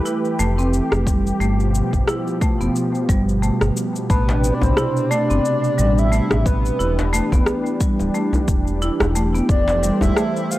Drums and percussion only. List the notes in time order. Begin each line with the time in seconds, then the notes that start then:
0.06 cabasa
0.25 cabasa
0.39 cabasa
0.59 cabasa
0.73 cabasa
0.92 cross-stick, cabasa
1.07 kick, cabasa
1.27 cabasa
1.41 cabasa
1.60 cabasa
1.75 cabasa
1.93 kick, cabasa
2.08 cross-stick, cabasa
2.27 cabasa
2.41 kick, cabasa
2.61 cabasa
2.76 cabasa
2.95 cabasa
3.09 kick, cabasa
3.29 cabasa
3.43 cabasa
3.61 cross-stick, cabasa
3.77 cabasa
3.96 cabasa
4.10 kick, cabasa
4.29 djembe slap, cabasa
4.44 cabasa
4.61 djembe tone, djembe bass, cabasa
4.77 cross-stick, cabasa
4.97 cabasa
5.12 cabasa
5.30 cabasa
5.45 cabasa
5.64 cabasa
5.79 djembe tone, cabasa
5.98 cabasa
6.13 cabasa
6.31 cross-stick, djembe tone, cabasa
6.45 kick, djembe tone, cabasa
6.65 cabasa
6.80 cabasa
6.99 djembe slap, cabasa
7.14 cabasa
7.32 kick, djembe tone, djembe bass, cabasa
7.46 cross-stick, cabasa
7.66 cabasa
7.81 kick, cabasa
7.99 djembe slap, cabasa
8.15 cabasa
8.33 djembe bass, cabasa
8.48 kick, djembe tone, cabasa
8.67 cabasa
8.82 cabasa
9.00 cross-stick, djembe tone, cabasa
9.16 cabasa
9.35 cabasa
9.49 kick, cabasa
9.68 djembe slap, cabasa
9.83 cabasa
10.01 djembe tone, djembe bass, cabasa
10.17 cross-stick, cabasa
10.37 cabasa
10.51 cabasa